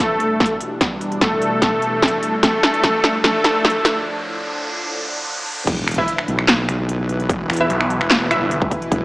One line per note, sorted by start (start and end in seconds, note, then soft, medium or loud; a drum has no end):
0.00 2.40 B2 medium
0.00 2.40 E3 medium
0.00 2.40 G3 medium
0.00 0.53 A3 medium
0.00 2.40 D4 medium
0.00 0.53 A4 loud
0.00 riser medium
0.20 closed hi-hat medium
0.40 kick loud
0.40 snare medium
0.40 closed hi-hat soft
0.46 closed hi-hat medium
0.61 closed hi-hat medium
0.81 kick loud
0.81 snare medium
0.81 closed hi-hat medium
1.01 closed hi-hat medium
1.12 closed hi-hat soft
1.21 2.35 A3 medium
1.21 2.35 A4 medium
1.21 kick loud
1.21 snare medium
1.21 closed hi-hat medium
1.42 closed hi-hat medium
1.62 kick medium
1.62 snare medium
1.62 closed hi-hat medium
1.82 closed hi-hat medium
2.02 kick loud
2.02 snare medium
2.02 closed hi-hat soft
2.08 closed hi-hat medium
2.23 closed hi-hat medium
2.43 5.64 A2 medium
2.43 5.64 D3 medium
2.43 5.64 F3 medium
2.43 3.16 A3 medium
2.43 5.64 D4 medium
2.43 3.16 A4 loud
2.43 kick loud
2.43 snare medium
2.43 closed hi-hat medium
2.63 snare medium
2.63 closed hi-hat medium
2.74 closed hi-hat soft
2.83 kick loud
2.83 snare medium
2.83 closed hi-hat medium
3.04 snare medium
3.04 closed hi-hat medium
3.24 3.97 A3 medium
3.24 3.97 A4 loud
3.24 kick loud
3.24 snare medium
3.24 closed hi-hat medium
3.44 snare medium
3.44 closed hi-hat medium
3.65 kick loud
3.65 snare medium
3.65 closed hi-hat soft
3.70 closed hi-hat medium
3.85 snare medium
3.85 closed hi-hat medium
5.67 6.06 E1 loud
5.67 9.05 B2 medium
5.67 9.05 E3 medium
5.67 9.05 E4 medium
5.67 8.90 B4 medium
5.67 kick loud
5.67 closed hi-hat medium
5.67 crash loud
5.88 finger snap medium
5.88 closed hi-hat medium
5.91 closed hi-hat medium
5.94 7.58 E4 medium
5.94 7.58 B4 medium
5.94 7.58 E5 medium
5.94 kick medium
5.94 closed hi-hat medium
6.08 closed hi-hat medium
6.18 finger snap medium
6.28 6.67 B1 loud
6.28 closed hi-hat medium
6.39 finger snap medium
6.48 snare loud
6.48 clap medium
6.48 closed hi-hat medium
6.69 7.28 B1 loud
6.69 finger snap medium
6.69 closed hi-hat medium
6.89 closed hi-hat medium
7.09 closed hi-hat medium
7.20 closed hi-hat soft
7.29 7.48 E1 loud
7.29 kick loud
7.29 closed hi-hat medium
7.50 7.68 E2 loud
7.50 finger snap medium
7.50 closed hi-hat medium
7.53 closed hi-hat medium
7.57 7.66 E4 loud
7.57 7.66 B4 medium
7.57 7.66 E5 loud
7.57 closed hi-hat medium
7.70 7.99 B1 loud
7.70 closed hi-hat medium
7.81 finger snap medium
7.90 closed hi-hat medium
8.01 8.40 E1 medium
8.01 finger snap medium
8.11 snare loud
8.11 clap medium
8.11 closed hi-hat medium
8.31 8.41 E4 medium
8.31 8.41 B4 medium
8.31 8.41 E5 loud
8.31 finger snap medium
8.31 closed hi-hat medium
8.41 8.70 G1 medium
8.51 closed hi-hat medium
8.62 kick loud
8.71 kick medium
8.71 closed hi-hat medium
8.82 closed hi-hat soft
8.92 9.05 E1 medium
8.92 9.05 D5 medium
8.92 kick loud
8.92 closed hi-hat medium